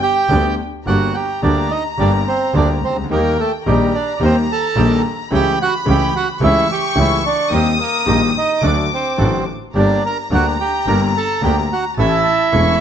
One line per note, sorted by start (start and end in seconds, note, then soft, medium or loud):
0.00 0.55 G4 medium
0.00 0.59 G5 loud
0.00 0.55 G5 loud
0.29 0.53 D2 loud
0.29 0.54 D2 medium
0.29 0.54 D3 medium
0.29 0.54 G3 medium
0.29 0.54 B3 medium
0.29 0.54 D4 medium
0.29 0.54 G4 medium
0.86 1.10 G1 medium
0.86 1.10 G2 medium
0.86 1.10 D3 medium
0.86 1.11 G3 medium
0.86 1.10 A#3 medium
0.86 1.11 A#3 medium
0.86 1.11 D4 medium
0.86 1.14 F#4 medium
0.86 1.10 G4 medium
0.86 1.11 G4 medium
0.86 1.16 F#5 medium
0.86 3.07 A#5 medium
1.14 1.42 G4 medium
1.14 1.41 G5 medium
1.42 1.66 D2 medium
1.42 1.67 D2 medium
1.42 1.67 D3 medium
1.42 1.66 G3 medium
1.42 1.67 A#3 medium
1.42 1.67 D4 medium
1.42 1.70 D4 medium
1.42 1.67 G4 medium
1.42 1.72 D5 medium
1.71 1.84 D#4 medium
1.71 1.83 D#5 medium
1.98 2.22 G1 medium
1.98 2.23 G1 medium
1.98 2.23 G2 medium
1.98 2.23 D3 medium
1.98 2.23 G3 medium
1.98 2.23 A#3 medium
1.98 2.23 D4 medium
1.98 2.13 D4 medium
1.98 2.23 G4 medium
1.98 2.12 D5 medium
2.28 2.54 C4 medium
2.28 2.56 C5 medium
2.54 2.78 D2 loud
2.54 2.78 D2 medium
2.54 2.78 D3 medium
2.54 2.78 G3 medium
2.54 2.78 A#3 medium
2.54 2.79 A#3 medium
2.54 2.79 D4 medium
2.54 2.69 D4 medium
2.54 2.78 G4 medium
2.54 2.79 G4 medium
2.54 2.68 D5 medium
2.83 3.10 C#2 medium
2.83 2.97 C4 medium
2.83 2.97 C5 medium
2.90 2.97 C2 medium
2.96 3.03 C#2 medium
3.04 3.11 D2 medium
3.10 3.34 D#2 medium
3.10 3.34 D#3 medium
3.10 3.34 G3 medium
3.10 3.34 A#3 medium
3.10 3.38 A#3 medium
3.10 3.34 D#4 medium
3.10 3.34 G4 medium
3.10 3.35 G4 medium
3.10 3.40 A#4 loud
3.10 3.63 G5 medium
3.40 3.52 A3 medium
3.40 3.52 A4 medium
3.66 3.90 A#1 loud
3.66 3.90 A#1 medium
3.66 3.90 A#2 medium
3.66 3.90 D#3 medium
3.66 3.90 G3 medium
3.66 3.93 G3 medium
3.66 3.90 A#3 medium
3.66 3.90 D#4 medium
3.66 3.90 G4 medium
3.66 3.96 G4 medium
3.66 5.32 A#5 medium
3.94 4.14 D4 medium
3.94 4.14 D5 medium
4.16 4.22 D5 medium
4.20 4.44 D#2 medium
4.20 4.45 D#2 medium
4.20 4.45 D#3 medium
4.20 4.45 G3 medium
4.20 4.45 A#3 medium
4.20 4.45 D#4 medium
4.20 4.45 G4 medium
4.24 4.36 C4 medium
4.24 4.36 C5 loud
4.52 5.02 A4 medium
4.52 5.02 A5 loud
4.76 5.00 A#1 loud
4.76 5.00 A#1 medium
4.76 5.00 A#2 medium
4.76 5.00 D#3 medium
4.76 5.00 G3 medium
4.76 5.00 A#3 medium
4.76 5.00 D#4 medium
4.76 5.00 G4 medium
5.31 5.54 C#2 medium
5.31 5.55 C#2 medium
5.31 5.55 C#3 medium
5.31 5.54 E3 medium
5.31 5.55 A3 medium
5.31 5.55 C#4 medium
5.31 5.55 G4 medium
5.31 5.59 G4 medium
5.31 6.41 B5 loud
5.35 5.59 G5 loud
5.62 5.74 F#4 medium
5.62 5.74 F#5 loud
5.86 6.09 C#2 medium
5.86 6.10 C#2 loud
5.86 6.09 C#3 medium
5.86 6.09 E3 medium
5.86 6.09 A3 medium
5.86 6.10 A3 medium
5.86 6.09 C#4 medium
5.86 6.10 C#4 medium
5.86 6.10 G4 medium
5.90 6.14 G4 medium
5.90 6.14 G5 loud
6.16 6.28 F#4 medium
6.16 6.29 F#5 loud
6.41 6.64 C#2 loud
6.41 6.64 C#2 medium
6.41 6.64 C#3 medium
6.41 6.64 E3 medium
6.41 6.64 A3 medium
6.41 6.65 C#4 medium
6.41 6.68 E4 medium
6.41 6.65 G4 medium
6.41 6.71 E5 loud
6.41 7.47 C#6 loud
6.72 6.96 G4 medium
6.72 6.99 G5 loud
6.95 7.19 C#2 medium
6.95 7.20 C#2 loud
6.95 7.19 C#3 medium
6.95 7.19 E3 medium
6.95 7.19 A3 medium
6.95 7.19 C#4 medium
6.95 7.19 G4 medium
6.95 7.20 G4 medium
7.00 7.24 E4 medium
7.00 7.25 E5 loud
7.26 7.50 D4 medium
7.26 7.54 D5 medium
7.50 7.74 D#2 medium
7.50 7.75 D#2 medium
7.50 7.74 D#3 medium
7.50 7.74 G3 medium
7.50 7.74 A#3 medium
7.50 7.78 C4 medium
7.50 7.75 D#4 medium
7.50 7.74 G4 medium
7.50 7.75 G4 medium
7.50 8.62 D#6 loud
7.55 7.79 C5 medium
7.80 8.05 A#3 medium
7.80 8.07 A#4 medium
8.06 8.30 A#1 medium
8.06 8.30 A#2 medium
8.06 8.30 D#3 medium
8.06 8.30 G3 medium
8.06 8.30 A#3 medium
8.06 8.30 D#4 medium
8.06 8.21 D#4 medium
8.06 8.30 G4 medium
8.10 8.22 D#5 medium
8.37 8.62 D#4 medium
8.37 8.65 D#5 medium
8.61 8.86 D2 medium
8.61 8.86 D3 medium
8.61 8.86 F#3 medium
8.61 8.86 A3 medium
8.61 8.86 D4 medium
8.61 8.77 D4 medium
8.61 8.86 F#4 medium
8.61 9.46 D6 loud
8.66 8.78 D5 medium
8.94 9.44 C4 medium
8.94 9.45 C5 medium
9.17 9.42 A1 medium
9.17 9.42 A1 loud
9.17 9.42 A2 medium
9.17 9.41 D3 medium
9.17 9.42 F#3 medium
9.17 9.42 A3 medium
9.17 9.42 D4 medium
9.17 9.42 F#4 medium
9.74 9.98 G1 medium
9.74 9.99 G1 medium
9.74 9.99 G2 medium
9.74 9.99 D3 medium
9.74 9.99 G3 medium
9.74 9.98 A#3 medium
9.74 9.99 A#3 medium
9.74 9.99 D4 medium
9.74 9.99 G4 medium
9.74 11.94 A#5 loud
9.78 10.03 D4 medium
9.78 10.04 D5 medium
10.05 10.17 A#4 medium
10.05 10.18 A#5 medium
10.31 10.55 D2 medium
10.31 10.55 D3 medium
10.31 10.55 G3 medium
10.31 10.55 A#3 medium
10.31 10.55 D4 medium
10.31 10.46 F#4 medium
10.31 10.55 G4 medium
10.31 10.46 F#5 medium
10.61 10.86 G4 medium
10.61 10.89 G5 medium
10.86 11.10 G1 medium
10.86 11.11 G1 medium
10.86 11.11 G2 medium
10.86 11.10 D3 medium
10.86 11.10 G3 medium
10.86 11.10 A#3 medium
10.86 11.11 A#3 medium
10.86 11.11 D4 medium
10.86 11.10 G4 medium
10.86 11.11 G4 medium
10.86 11.01 A#4 medium
10.86 11.01 A#5 loud
11.17 11.42 A4 medium
11.17 11.42 A5 loud
11.42 11.66 D2 loud
11.42 11.66 D2 medium
11.42 11.66 D3 medium
11.42 11.66 G3 medium
11.42 11.66 A#3 medium
11.42 11.66 D4 medium
11.42 11.66 G4 medium
11.42 11.56 G4 medium
11.42 11.57 G5 medium
11.73 11.85 F#4 medium
11.73 11.85 F#5 medium
11.98 12.21 A1 medium
11.98 12.22 A1 medium
11.98 12.22 A2 medium
11.98 12.22 E3 medium
11.98 12.21 A3 medium
11.98 12.22 A3 medium
11.98 12.22 C#4 medium
11.98 12.22 E4 medium
11.98 12.80 E4 medium
11.98 12.22 A4 medium
11.98 12.80 E5 loud
11.98 12.53 A5 loud
12.53 12.76 E1 medium
12.53 12.76 E2 medium
12.53 12.76 E3 medium
12.53 12.76 A3 medium
12.53 12.76 C#4 medium
12.53 12.76 E4 medium
12.53 12.77 A4 medium
12.53 12.79 C#6 medium